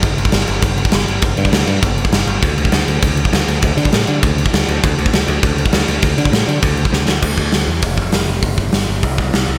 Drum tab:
CC |x-x-x-x-x-x-x-x-|x-x-x-x-x-x-x-x-|x-x-x-x-x-x-x-x-|x-x-x-x-x-x-x-x-|
HH |----------------|----------------|----------------|----------------|
SD |----o-------o---|----o-------o---|----o-------o---|----o-------o---|
BD |o--o----o--o----|o--o----o--o----|o--o----o--o----|o--o----o--o----|

CC |x-x-x-x-x-x-x-x-|x-x-x-x-x-x-----|x---------------|----------------|
HH |----------------|----------------|----o---o---o---|o---o---o---o---|
SD |----o-------o---|----o-------o-o-|----o-------o---|----o-------o---|
BD |o--o----o--o----|o--o----o--o----|o-o-----o-o-----|o-o-----o-o-----|